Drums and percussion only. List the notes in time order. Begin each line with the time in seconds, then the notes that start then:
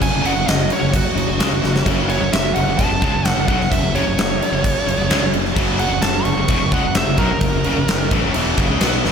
0.02 kick, crash
0.25 crash
0.48 snare, crash
0.70 crash
0.94 kick, crash
1.17 crash
1.40 snare, crash
1.64 snare
1.76 snare
1.86 kick, crash
2.09 crash
2.33 snare, crash
2.56 crash
2.79 kick, crash
3.02 kick, crash
3.25 snare, crash
3.48 kick, crash
3.61 snare
3.72 kick, crash
3.95 crash
4.18 snare, crash
4.42 crash
4.64 kick, crash
4.88 crash
5.10 snare, crash
5.33 crash
5.45 snare
5.56 kick, crash
5.79 crash
6.02 snare, crash
6.25 crash
6.48 kick, crash
6.72 kick, crash
6.95 snare, crash
7.17 kick, crash
7.41 kick, crash
7.64 crash
7.88 snare, crash
8.11 kick, crash
8.34 crash
8.57 kick, crash
8.81 snare, crash
9.05 snare